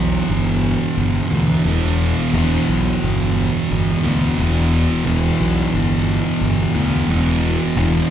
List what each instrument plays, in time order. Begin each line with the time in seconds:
Already playing: fingered electric bass B1, distorted electric guitar E2 B2 E3
0.28 fingered electric bass G1
0.97 fingered electric bass G1
1.31 fingered electric bass D2, distorted electric guitar E2 B2 E3
1.65 fingered electric bass E1, distorted electric guitar E2 B2 E3
2.32 fingered electric bass E1, distorted electric guitar E2 B2 E3
2.68 fingered electric bass B1
3.02 fingered electric bass G1
3.70 fingered electric bass G1
4.03 fingered electric bass D2, distorted electric guitar E2 B2 E3
4.38 fingered electric bass E1, distorted electric guitar E2 B2 E3
5.05 fingered electric bass E1, distorted electric guitar E2 B2 E3
5.40 fingered electric bass B1
5.73 fingered electric bass G1
6.41 fingered electric bass G1
6.75 fingered electric bass D2, distorted electric guitar E2 B2 E3
7.08 fingered electric bass E1, distorted electric guitar E2 B2 E3
7.76 fingered electric bass E1, distorted electric guitar E2 B2 E3